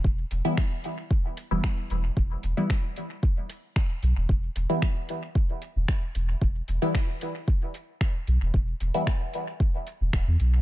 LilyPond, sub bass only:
\new Staff \with { instrumentName = "Sub bass" } { \clef bass \time 4/4 \key e \minor \tempo 4 = 113 e,,16 r16 e,,16 r2 e,,16 r8 e,,16 r16 | e,,16 r16 e,,16 r2 r8. b,,16 e,,16 | e,,16 r16 e,,16 r2 e,,16 r8 e,,16 r16 | e,,16 r16 e,,16 r2 r8. b,,16 e,,16 |
e,,16 r16 e,,16 r2 e,,16 d,,16 e,16 b,,16 r16 | }